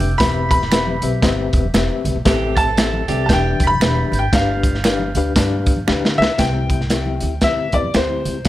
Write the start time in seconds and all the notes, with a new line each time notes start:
Already playing: D4 G4 B4 E5 G5 G6
0.00 F1, closed hi-hat
0.18 E1 E3 C4 G4 B4 E5 B5 B6, kick, snare, closed hi-hat
0.49 B5 B6, kick, closed hi-hat
0.62 snare
0.72 C4 G4 B4 E5, finger snap, snare, closed hi-hat, muted conga
0.87 muted conga, high conga
1.02 B1 C4 G4 B4 E5, closed hi-hat, low conga
1.22 G1 C4 G4 B4 D#5, kick, snare, closed hi-hat, muted conga, high conga
1.28 E5
1.39 muted conga
1.53 E1, kick, closed hi-hat
1.65 high conga
1.74 E1 C4 G4 B4 E5, finger snap, snare, closed hi-hat
1.91 muted conga
2.05 B1, closed hi-hat, low conga
2.15 A#1
2.25 A1 A2 E3 C4 G4 A4 E5, kick, snare, closed hi-hat
2.42 muted conga
2.56 A5 A6, kick, closed hi-hat
2.67 E3 C4 A4
2.77 C4 G4 A4 E5, finger snap, snare, closed hi-hat, muted conga
2.93 muted conga, high conga
3.07 C2 E3 C4 D4 G4 A4 E5, closed hi-hat, low conga
3.24 A5 A6
3.29 E1 E3 D4 G4 B4 E5 G6, kick, snare, closed hi-hat, muted conga, high conga
3.33 G5
3.60 F1 B6, kick, closed hi-hat
3.67 B5
3.71 high conga
3.80 E1 D4 G4 B4 E5, finger snap, snare, closed hi-hat
3.97 muted conga
4.12 G#1 G6, closed hi-hat, low conga
4.19 G5
4.33 G1 G2 D4 G4 B4 F5 F6, kick, snare, closed hi-hat
4.63 kick, closed hi-hat
4.75 snare
4.84 D4 G4 B4 F5, finger snap, snare, closed hi-hat, muted conga
4.99 muted conga, high conga
5.15 D2 D4 G4 B4 F5, closed hi-hat, low conga
5.36 G2 D4 G4 B4 F5, kick, snare, closed hi-hat, high conga
5.66 E2, kick, closed hi-hat
5.77 high conga
5.87 D2 D4 G4 B4 F5, finger snap, snare
6.05 snare
6.18 C#2 E5, low conga
6.22 snare
6.38 C2 C3 C4 E4 G4 E5 G5, kick, snare, closed hi-hat
6.69 kick, closed hi-hat, high conga
6.81 snare
6.90 C4 E4 G4 E5, finger snap, snare, closed hi-hat
7.06 muted conga, high conga
7.21 D2, closed hi-hat, low conga
7.41 C4 E4 G4 E5, kick, snare, closed hi-hat, muted conga, high conga
7.72 E2 C4 E4 G4 B4 D5, kick, closed hi-hat
7.84 high conga
7.94 D2 C4 E4 G4 C5, finger snap, snare, closed hi-hat
8.10 muted conga
8.25 C#2, closed hi-hat, low conga
8.45 closed hi-hat